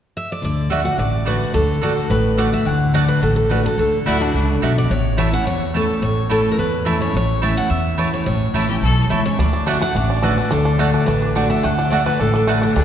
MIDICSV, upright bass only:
0, 0, Header, 1, 2, 480
1, 0, Start_track
1, 0, Key_signature, 2, "major"
1, 0, Tempo, 280505
1, 722, Time_signature, 4, 2, 24, 8
1, 21980, End_track
2, 0, Start_track
2, 0, Title_t, "Upright bass"
2, 0, Program_c, 0, 32
2, 724, Note_on_c, 0, 38, 76
2, 1463, Note_off_c, 0, 38, 0
2, 1671, Note_on_c, 0, 33, 84
2, 2413, Note_off_c, 0, 33, 0
2, 2633, Note_on_c, 0, 38, 87
2, 3374, Note_off_c, 0, 38, 0
2, 3582, Note_on_c, 0, 33, 83
2, 4326, Note_off_c, 0, 33, 0
2, 4544, Note_on_c, 0, 38, 84
2, 5287, Note_off_c, 0, 38, 0
2, 5501, Note_on_c, 0, 33, 76
2, 6245, Note_off_c, 0, 33, 0
2, 6467, Note_on_c, 0, 38, 91
2, 6838, Note_off_c, 0, 38, 0
2, 6945, Note_on_c, 0, 38, 82
2, 7354, Note_off_c, 0, 38, 0
2, 7422, Note_on_c, 0, 37, 75
2, 7832, Note_off_c, 0, 37, 0
2, 7897, Note_on_c, 0, 35, 75
2, 8308, Note_off_c, 0, 35, 0
2, 8383, Note_on_c, 0, 33, 81
2, 9125, Note_off_c, 0, 33, 0
2, 9329, Note_on_c, 0, 40, 83
2, 10076, Note_off_c, 0, 40, 0
2, 10294, Note_on_c, 0, 33, 80
2, 11039, Note_off_c, 0, 33, 0
2, 11255, Note_on_c, 0, 40, 86
2, 12000, Note_off_c, 0, 40, 0
2, 12208, Note_on_c, 0, 33, 87
2, 12956, Note_off_c, 0, 33, 0
2, 13177, Note_on_c, 0, 40, 82
2, 13921, Note_off_c, 0, 40, 0
2, 14136, Note_on_c, 0, 33, 89
2, 14510, Note_off_c, 0, 33, 0
2, 14604, Note_on_c, 0, 33, 79
2, 15021, Note_off_c, 0, 33, 0
2, 15088, Note_on_c, 0, 35, 76
2, 15504, Note_off_c, 0, 35, 0
2, 15566, Note_on_c, 0, 37, 81
2, 15984, Note_off_c, 0, 37, 0
2, 16059, Note_on_c, 0, 38, 88
2, 16805, Note_off_c, 0, 38, 0
2, 17020, Note_on_c, 0, 33, 84
2, 17767, Note_off_c, 0, 33, 0
2, 17982, Note_on_c, 0, 38, 83
2, 18729, Note_off_c, 0, 38, 0
2, 18945, Note_on_c, 0, 33, 80
2, 19691, Note_off_c, 0, 33, 0
2, 19919, Note_on_c, 0, 38, 88
2, 20661, Note_off_c, 0, 38, 0
2, 20879, Note_on_c, 0, 33, 85
2, 21622, Note_off_c, 0, 33, 0
2, 21831, Note_on_c, 0, 38, 89
2, 21980, Note_off_c, 0, 38, 0
2, 21980, End_track
0, 0, End_of_file